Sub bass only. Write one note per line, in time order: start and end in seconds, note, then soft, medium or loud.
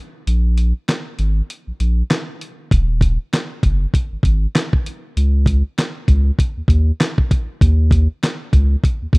0.27 0.73 A#1 loud
1.19 1.42 G#1 medium
1.67 1.72 A#1 soft
1.80 2.03 A#1 medium
2.72 3.18 D#1 loud
3.63 3.86 F#1 medium
4.12 4.17 G#1 soft
4.23 4.47 G#1 loud
5.17 5.63 C#2 loud
6.08 6.31 C#2 loud
6.57 6.62 D#2 soft
6.68 6.92 D#2 medium
7.61 8.08 D#2 loud
8.53 8.76 C#2 loud
9.02 9.07 D#2 soft
9.13 9.18 D#2 loud